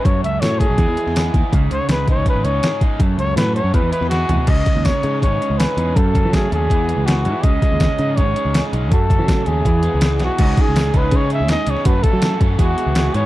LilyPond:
<<
  \new Staff \with { instrumentName = "Trumpet" } { \time 4/4 \key cis \minor \tempo 4 = 163 cis''8 e''8 cis''8 gis'2 r8 | r8 cis''8 b'8 cis''8 b'8 cis''4 r8 | r8 cis''8 b'8 cis''8 b'8 b'8 fis'4 | dis''4 cis''4 cis''4 b'4 |
a'4 gis'8 gis'4. fis'4 | dis''2 cis''4~ cis''16 r8. | a'4. gis'2 fis'8~ | fis'8 gis'4 b'8 cis''8 e''8 dis''8 cis''8 |
b'8 a'4 r8 fis'4. cis''8 | }
  \new Staff \with { instrumentName = "Tine electric piano" } { \time 4/4 \key cis \minor r1 | r1 | r1 | r1 |
r1 | gis'1 | fis'2 e'4. r8 | dis'1 |
fis'2 gis'2 | }
  \new Staff \with { instrumentName = "Overdriven electric guitar" } { \time 4/4 \key cis \minor <fis, cis fis a cis' a'>8 <fis a cis' a'>8 <fis a cis' a'>4 <e gis b e' gis'>8 <b e' gis'>8 <gis b e' gis'>8 <b e' gis'>8 | <cis gis cis' dis' gis'>8 <cis' dis' gis'>8 <gis cis' dis' gis'>4 <cis gis cis' dis' gis'>8 <cis' dis' gis'>8 <gis cis' dis' gis'>8 <cis' dis' gis'>8 | <fis, cis fis a cis' a'>8 <fis a cis' a'>8 <fis a cis' a'>4 <e gis b e' gis'>8 <b e' gis'>8 <gis b e' gis'>8 <b e' gis'>8 | <cis gis cis' dis' gis'>8 <cis' dis' gis'>8 <gis cis' dis' gis'>8 <cis gis cis' dis' gis'>8 <gis cis' dis' gis'>8 <cis' dis' gis'>8 <cis gis cis' dis' gis'>8 <cis' dis' gis'>8 |
<fis, cis fis a cis' a'>8 <fis a cis' a'>8 <fis a cis' a'>8 <fis, cis fis a cis' a'>8 <e gis b e' gis'>8 <b e' gis'>8 <e gis b e' gis'>8 <b e' gis'>8 | <cis gis cis' dis' gis'>8 <cis' dis' gis'>8 <gis cis' dis' gis'>8 <cis gis cis' dis' gis'>8 <gis cis' dis' gis'>8 <cis' dis' gis'>8 <cis gis cis' dis' gis'>8 <cis' dis' gis'>8 | <fis, cis fis a cis' a'>8 <fis a cis' a'>8 <fis a cis' a'>8 <fis, cis fis a cis' a'>8 <e gis b e' gis'>8 <b e' gis'>8 <e gis b e' gis'>8 <b e' gis'>8 | <cis gis cis' dis' gis'>4 <cis gis cis' dis' gis'>8 <cis gis cis' dis' gis'>8 <cis gis cis' dis' gis'>4 <cis gis cis' dis' gis'>8 <cis gis cis' dis' gis'>8 |
<fis, cis fis a cis' a'>4 <fis, cis fis a cis' a'>8 <fis, cis fis a cis' a'>8 <e gis b e' gis'>4 <e gis b e' gis'>8 <e gis b e' gis'>8 | }
  \new Staff \with { instrumentName = "Overdriven electric guitar" } { \time 4/4 \key cis \minor fis,4 fis8 cis'8 e8 e'8 gis'8 e'8 | cis4 gis8 dis'8 cis'8 dis'8 gis'8 dis'8 | fis,4 fis8 cis'8 e8 e'8 gis'8 e'8 | cis8 gis8 cis'8 dis'8 gis8 cis'8 gis'8 dis'8 |
fis,8 cis8 a8 cis'8 e8 b8 gis'8 e'8 | cis8 gis8 cis'8 dis'8 gis8 cis'8 gis'8 dis'8 | fis,8 cis8 a8 cis'8 e8 b8 gis'8 e'8 | <cis gis cis' dis' gis'>4 <cis gis cis' dis' gis'>8 <cis gis cis' dis' gis'>8 <cis gis cis' dis' gis'>4 <cis gis cis' dis' gis'>8 <cis gis cis' dis' gis'>8 |
<fis, cis fis a cis' a'>4 <fis, cis fis a cis' a'>8 <fis, cis fis a cis' a'>8 <e gis b e' gis'>4 <e gis b e' gis'>8 <e gis b e' gis'>8 | }
  \new Staff \with { instrumentName = "Picked electric bass" } { \clef bass \time 4/4 \key cis \minor fis,8 cis,8 a,8. b,,16 e,16 e,16 r16 e,8. dis,16 r16 | cis,8 cis,16 r16 cis,8. cis,16 r16 gis,,16 cis,8 r4 | fis,8 cis,8 a,8. fis,16 e,16 e,16 r16 e,8. e,16 r16 | cis,8 r16 dis,8 r16 cis8 gis,,8 r16 cis,8 r16 e,8 |
fis,8. fis8. dis,8 e,8. cis,8. gis,16 r16 | cis,8 r16 dis,8 r16 cis8 gis,,8 r16 cis,8 r16 b,,8 | fis,8. fis8. dis,8 e,8. cis,8. b,,16 r16 | cis,8 r16 cis,8. cis,8 cis8. dis,8 r16 cis,16 r16 |
fis,8 r16 fis8. fis,8 e,8 r16 cis,8. gis,8 | }
  \new DrumStaff \with { instrumentName = "Drums" } \drummode { \time 4/4 <hh bd>8 hh8 <hh sn tamb>8 <hh bd>8 <hh bd>8 hh16 sn16 <hh sn tamb>8 <hh bd>8 | <hh bd>8 hh8 <hh sn tamb>8 <hh bd>8 <hh bd>8 hh8 <hh sn tamb>8 <hh bd>8 | <hh bd>8 hh8 <hh sn tamb>8 hh8 <hh bd>8 hh16 sn16 <hh sn>8 <hh tomfh>8 | <cymc hh bd>8 <hh bd>8 <hh bd sn tamb>8 hh8 <hh bd>8 hh8 <hh sn tamb>8 hh8 |
<hh bd>8 <hh bd>8 <hh bd sn tamb>8 hh8 <hh bd>8 hh8 <hh sn tamb>8 hh8 | <hh bd>8 <hh bd>8 <hh bd sn tamb>8 hh8 <hh bd>8 hh8 <hh sn tamb>8 hh8 | <hh bd>8 <hh bd>8 <hh bd sn tamb>8 hh8 <hh bd>8 hh8 <hh sn tamb>8 <hh sn>8 | <cymc hh bd>8 <hh bd>8 <hh sn tamb>8 <hh bd>8 <hh bd>8 hh8 <hh sn tamb>8 hh16 sn16 |
<hh bd>8 <hh bd>8 <hh sn tamb>8 <hh bd>8 <hh bd>8 hh8 <hh sn tamb>8 hh8 | }
>>